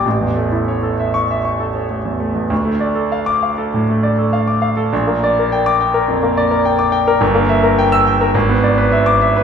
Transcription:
\new Staff \with { instrumentName = "Grand piano" } { \time 4/4 \key d \minor \tempo 4 = 102 << { r4. r16 cis'''8 r4. r16 | r4 r16 d'''8 r2 r16 | r4 r16 d'''8 r2 r16 | r4 r16 e'''8 r4. d'''8 r16 | } \\ { a,,16 e,16 a16 e'16 cis''16 a'16 e''8 e''16 cis'''16 a'16 cis''16 a16 e,16 a16 e,16 | d,16 a16 d''16 a'16 f''8 f''16 a'16 a,16 a16 d''16 a'16 f''16 d'''16 f''16 a'16 | bes,,16 bes16 d''16 bes'16 g''8 g''16 bes'16 f,16 bes16 d''16 bes'16 g''16 d'''16 g''16 bes'16 | g,,16 bes16 e''16 bes'16 g''8 g''16 bes'16 gis,,16 b16 d''16 b'16 e''8 e''16 b'16 | } >> }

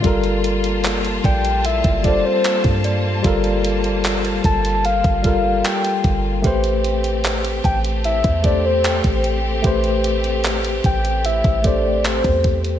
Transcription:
<<
  \new Staff \with { instrumentName = "Synth bell" } { \time 4/4 \key a \phrygian \tempo 4 = 75 r4. d''4. r8 d''8~ | d''4 r2. | g''4. a''4. g''4~ | g''8 r2. r8 | }
  \new Staff \with { instrumentName = "Soft synth lead" } { \time 4/4 \key a \phrygian r4. g''8 e''8 d''16 c''8. r8 | r4. a''8 f''4 g''8. r16 | r4. g''8 e''8 d''16 c''8. r8 | r4. g''8 e''8 d''8 c''8. r16 | }
  \new Staff \with { instrumentName = "Tine electric piano" } { \time 4/4 \key a \phrygian <g f' a' bes'>2 r8 <g f' a' c''>4. | <g f' a' bes'>2 r8 <g f' a' bes'>4. | <a g' b' c''>2 r8 <a g' a' c''>4. | <a g' b' c''>2 r8 <a g' a' c''>4. | }
  \new Staff \with { instrumentName = "String section" } { \time 4/4 \key a \phrygian <g bes f' a''>1~ | <g bes f' a''>1 | <a c' g'>1~ | <a c' g'>1 | }
  \new Staff \with { instrumentName = "808-style bass" } { \clef bass \time 4/4 \key a \phrygian g,,4. bes,,8. g,,8 r8 g,8. | g,,4. g,,8. g,,8. r8 g,,8 | a,,4. a,,8. e,4 a,,8. | a,,4. a,,8. a,,4 e,8. | }
  \new DrumStaff \with { instrumentName = "Drums" } \drummode { \time 4/4 <hh bd>16 hh16 hh16 hh16 <hc hh>16 hh16 <hh bd>16 hh16 hh16 <hh bd>16 <hh bd>8 <hc hh>16 <hh bd>16 hh8 | <hh bd>16 hh16 hh16 hh16 <hc hh>16 hh16 <hh bd>16 hh16 hh16 <hh bd>16 <hh bd>8 <hc hh>16 hh16 <hh bd>8 | <hh bd>16 hh16 hh16 hh16 <hc hh>16 hh16 <hh bd>16 hh16 hh16 <hh bd>16 <hh bd>8 <hc hh>16 <hh bd>16 hh8 | <hh bd>16 hh16 hh16 hh16 <hc hh>16 hh16 <hh bd>16 hh16 hh16 <hh bd>16 <hh bd>8 <hc hh>16 <hh bd>16 <hh hho bd>16 hh16 | }
>>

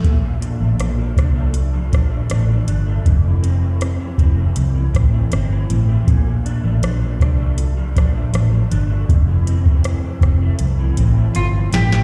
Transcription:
<<
  \new Staff \with { instrumentName = "Clean electric guitar" } { \time 4/4 \key bes \lydian \tempo 4 = 80 r1 | r1 | r1 | r2. f'8 g'8 | }
  \new Staff \with { instrumentName = "Clean electric guitar" } { \time 4/4 \key bes \lydian bes,16 f16 d'16 a16 d'16 f16 d'16 a8 f16 d'16 a16 d'16 f16 d'16 a16 | f,16 e16 c'16 a16 c'16 e16 c'16 a16 f,16 e16 c'16 a16 c'16 e16 c'16 a16 | bes,16 f16 d'16 a16 d'16 f16 d'16 a8 f16 d'16 a16 d'16 f16 d'16 a16 | f,16 e16 c'16 a16 c'16 e16 c'16 a16 f,16 e16 c'16 a16 c'16 e16 c'16 a16 | }
  \new Staff \with { instrumentName = "Fingered electric bass" } { \clef bass \time 4/4 \key bes \lydian bes,,8. a,,16 bes,,8 c,4 bes,,8 a,,8 g,,8 | f,,4~ f,,16 r16 f,,8 c,8 a,,8 g,,8 a,,8 | bes,,8. a,,16 bes,,8 c,4 bes,,8 a,,8 g,,8 | f,,4~ f,,16 r16 f,,8 c,8 a,,8 g,,8 a,,8 | }
  \new DrumStaff \with { instrumentName = "Drums" } \drummode { \time 4/4 <hh bd>8 hh8 <hh ss>8 <hh bd ss>8 hh8 <hh bd ss>8 <hh ss>8 hh8 | <hh bd>8 hh8 <hh ss>8 <hh bd>8 hh8 <hh bd ss>8 <hh ss>8 hh8 | <hh bd>8 hh8 <hh ss>8 <hh bd ss>8 hh8 <hh bd ss>8 <hh ss>8 hh8 | <hh bd>8 hh16 bd16 <hh ss>8 <hh bd ss>8 hh8 hh8 hh8 <hh sn>16 sn16 | }
>>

